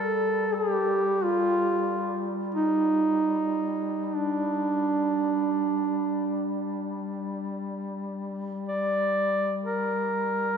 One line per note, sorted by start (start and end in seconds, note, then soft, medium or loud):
0.00 10.57 G3 soft
0.00 0.56 A4 medium
0.54 0.72 G#4 medium
0.72 1.25 G4 medium
1.24 2.22 F4 medium
2.55 4.05 D#4 medium
4.05 4.17 D#4 medium
4.16 6.68 D4 medium
8.69 9.58 D5 medium
9.64 10.57 A#4 medium